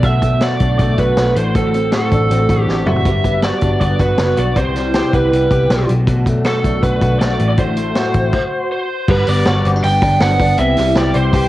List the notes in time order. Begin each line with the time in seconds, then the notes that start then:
Already playing: B1
0.03 B2 F#3 A3 D4 E5, kick, closed hi-hat
0.22 F#3 A3 D4, kick, closed hi-hat
0.41 B2 F#3 A3 D4 F#4 D5, snare, closed hi-hat
0.60 B1 A3 D4, kick, closed hi-hat
0.65 F#3
0.79 B1 B2 F#3 A3 D4 D5, kick, closed hi-hat
0.98 B1 F#4 B4, kick, closed hi-hat
1.17 B1 B2 F#3 A3 D4, snare, closed hi-hat
1.36 A1 A2 A3 C4 F#4 C5, closed hi-hat
1.55 A2 D3 A3 C4 F#4 A4, kick, closed hi-hat
1.74 A3 C4 F#4, closed hi-hat
1.92 D3 A3 C4 F#4 A4, snare, closed hi-hat
2.11 A1 A3 C4 D4, kick, closed hi-hat
2.30 A1 A2 D3 A3 C4 F#4, closed hi-hat
2.49 A1 F#4, kick, closed hi-hat
2.62 G4
2.67 A1 D3 A3 C4 F#4, snare
2.86 F#1 A3 C4 F#4 E5, mid tom
2.96 floor tom
3.05 G1 G2 D3 F#3 G3 B3 D4, kick, closed hi-hat
3.24 F#3 B3 D4, kick, closed hi-hat
3.42 D3 F#3 B3 D4 F#4 D5, snare, closed hi-hat
3.61 G1 F#3 B3 D4, kick, closed hi-hat
3.80 G1 G2 D3 F#3 B3 D4 D5, kick, closed hi-hat
3.99 G1 F#4 B4, kick, closed hi-hat
4.18 F#1 B3 D4, snare, closed hi-hat
4.37 B1 F#4 D5, closed hi-hat
4.56 C2 C3 G3 B3 E4 C5, kick, closed hi-hat
4.75 G3 B3 E4, snare, closed hi-hat
4.94 C3 G3 B3 E4 G4, snare, closed hi-hat
5.13 C2 G3 B3 E4 B4, kick, closed hi-hat
5.32 C2 C3 G3 B3 E4, closed hi-hat
5.51 C2 G4, kick, closed hi-hat
5.70 B1 C3 G3 B3 E4, snare, closed hi-hat
5.88 B1 B2 F#3 A3 D4, closed hi-hat
6.07 B2 F#3 A3 D4, kick, closed hi-hat
6.26 F#3 A3 D4, kick, closed hi-hat
6.44 B2 F#3 A3 D4 F#4 A4, snare, closed hi-hat
6.64 B1 D4, kick, closed hi-hat
6.82 B1 B2 F#3 A3 D4 B4, kick, closed hi-hat
7.01 B1 F#4, kick, closed hi-hat
7.20 B1 B2 F#3 A3 D4 D5, snare, closed hi-hat
7.39 A1 A2 A3 C4 F#4, closed hi-hat
7.49 D5
7.57 A2 D3 A3 C4 F#4 C5, kick, closed hi-hat
7.77 A3 C4 F#4, closed hi-hat
7.94 D3 A3 C4 F#4, snare, closed hi-hat
8.14 A1 A3 C4 F#4, kick, closed hi-hat
8.33 kick, crash
8.72 C5
9.08 G1 G2 D3 F#3 G3 B3 D4 B4, kick, crash
9.27 G1 F#3 B3 D4 D5, hi-hat pedal, open hi-hat
9.45 G1 G2 D3 F#3 B3 D4 F#4, snare, hi-hat pedal, open hi-hat
9.65 G1 C4, hi-hat pedal, open hi-hat
9.76 D4
9.83 G1 D3 F#3 B3 D4 G5, hi-hat pedal, open hi-hat
10.01 G1 F#3 B3 D4, kick, hi-hat pedal, open hi-hat
10.20 G1 G2 D3 F#3 B3 D4 F#5, snare, hi-hat pedal, open hi-hat
10.39 G1 F#3 B3 D4, kick, hi-hat pedal, open hi-hat
10.57 C2 C3 G3 B3 E4 E5, hi-hat pedal, open hi-hat
10.76 C2 G3 B3 E4, snare, hi-hat pedal, open hi-hat
10.95 C2 C3 G3 B3 E4 G4 D5, snare, hi-hat pedal, open hi-hat
11.14 C2 C5, hi-hat pedal, open hi-hat
11.33 C2 C3 G3 B3 E4 G4, kick, hi-hat pedal, open hi-hat